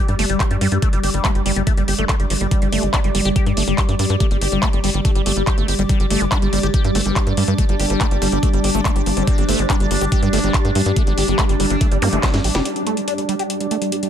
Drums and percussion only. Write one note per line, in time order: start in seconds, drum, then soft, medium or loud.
0.08 closed hi-hat medium
0.19 open hi-hat loud
0.30 closed hi-hat medium
0.40 kick loud
0.40 clap loud
0.40 closed hi-hat medium
0.51 closed hi-hat medium
0.61 open hi-hat medium
0.72 closed hi-hat medium
0.82 kick loud
0.82 closed hi-hat medium
0.93 closed hi-hat medium
1.04 open hi-hat loud
1.14 closed hi-hat medium
1.25 kick loud
1.25 clap loud
1.25 closed hi-hat loud
1.35 closed hi-hat medium
1.46 open hi-hat medium
1.56 closed hi-hat medium
1.67 kick loud
1.67 closed hi-hat loud
1.77 closed hi-hat medium
1.88 open hi-hat loud
1.99 closed hi-hat medium
2.09 kick loud
2.09 clap loud
2.09 closed hi-hat medium
2.20 closed hi-hat medium
2.30 open hi-hat loud
2.41 closed hi-hat medium
2.51 kick loud
2.51 closed hi-hat medium
2.62 closed hi-hat medium
2.72 open hi-hat loud
2.83 closed hi-hat soft
2.94 kick loud
2.94 clap loud
2.94 closed hi-hat medium
3.04 closed hi-hat medium
3.15 open hi-hat loud
3.25 closed hi-hat medium
3.36 kick loud
3.36 closed hi-hat medium
3.46 closed hi-hat soft
3.57 open hi-hat loud
3.68 closed hi-hat medium
3.78 kick loud
3.78 clap loud
3.78 closed hi-hat medium
3.89 closed hi-hat medium
3.99 open hi-hat medium
4.10 closed hi-hat medium
4.20 kick loud
4.20 closed hi-hat medium
4.31 closed hi-hat soft
4.41 open hi-hat loud
4.52 closed hi-hat medium
4.63 kick loud
4.63 clap loud
4.63 closed hi-hat medium
4.73 closed hi-hat medium
4.84 open hi-hat medium
4.94 closed hi-hat medium
5.05 kick loud
5.05 closed hi-hat medium
5.15 closed hi-hat soft
5.26 open hi-hat loud
5.37 closed hi-hat soft
5.47 kick loud
5.47 clap loud
5.47 closed hi-hat medium
5.58 closed hi-hat soft
5.68 open hi-hat loud
5.79 closed hi-hat soft
5.89 kick loud
5.89 closed hi-hat medium
6.00 closed hi-hat medium
6.11 open hi-hat loud
6.21 closed hi-hat soft
6.32 kick loud
6.32 clap loud
6.32 closed hi-hat medium
6.42 closed hi-hat medium
6.53 open hi-hat medium
6.63 closed hi-hat medium
6.74 kick loud
6.74 closed hi-hat medium
6.84 closed hi-hat soft
6.95 open hi-hat loud
7.06 closed hi-hat medium
7.16 kick loud
7.16 clap loud
7.16 closed hi-hat medium
7.27 closed hi-hat medium
7.37 open hi-hat medium
7.48 closed hi-hat medium
7.58 kick loud
7.58 closed hi-hat medium
7.69 closed hi-hat medium
7.80 open hi-hat loud
7.90 closed hi-hat soft
8.01 kick loud
8.01 clap loud
8.01 closed hi-hat medium
8.11 closed hi-hat medium
8.22 open hi-hat medium
8.32 closed hi-hat medium
8.43 kick loud
8.43 closed hi-hat medium
8.53 closed hi-hat medium
8.64 open hi-hat loud
8.75 closed hi-hat medium
8.85 kick loud
8.85 clap loud
8.85 closed hi-hat medium
8.96 closed hi-hat medium
9.06 open hi-hat medium
9.17 closed hi-hat medium
9.27 kick loud
9.27 closed hi-hat loud
9.38 closed hi-hat medium
9.49 open hi-hat loud
9.59 closed hi-hat medium
9.70 kick loud
9.70 clap loud
9.70 closed hi-hat medium
9.80 closed hi-hat medium
9.91 open hi-hat medium
10.01 closed hi-hat medium
10.12 kick loud
10.12 closed hi-hat loud
10.23 closed hi-hat medium
10.33 open hi-hat loud
10.44 closed hi-hat medium
10.54 kick loud
10.54 clap loud
10.54 closed hi-hat medium
10.65 closed hi-hat medium
10.75 open hi-hat medium
10.86 closed hi-hat medium
10.96 kick loud
10.96 closed hi-hat loud
11.07 closed hi-hat medium
11.18 open hi-hat loud
11.28 closed hi-hat medium
11.39 kick loud
11.39 clap loud
11.39 closed hi-hat loud
11.49 closed hi-hat medium
11.60 open hi-hat medium
11.70 closed hi-hat medium
11.81 kick loud
11.81 closed hi-hat loud
11.92 closed hi-hat medium
12.02 open hi-hat loud
12.13 closed hi-hat medium
12.23 kick loud
12.23 snare medium
12.23 clap loud
12.23 closed hi-hat loud
12.34 snare medium
12.34 closed hi-hat medium
12.44 open hi-hat medium
12.55 snare medium
12.55 closed hi-hat medium
12.65 closed hi-hat loud
12.76 closed hi-hat medium
12.87 closed hi-hat medium
12.97 closed hi-hat medium
13.08 closed hi-hat medium
13.18 closed hi-hat medium
13.29 closed hi-hat medium
13.39 closed hi-hat medium
13.50 closed hi-hat medium
13.61 closed hi-hat medium
13.71 closed hi-hat medium
13.82 closed hi-hat medium
13.92 closed hi-hat medium
14.03 closed hi-hat medium